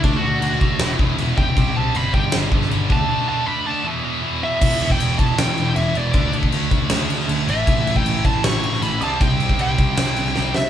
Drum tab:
CC |x---x---x---x---|x---x---x---x---|----------------|x-x-x-x-x-x-x-x-|
SD |--------o-------|--------o--o----|----------------|--------o-------|
BD |o-----o---o---o-|o-----o---o---o-|----------------|o--o--o---------|

CC |x-x-x-x-x-x-x-x-|x-x-x-x-x-x-x-x-|x-x-x-x-x-x-----|
SD |--------o--o----|--------o--o----|--------o--oo-o-|
BD |o--o--o---------|o--o--o---------|o--o--o---------|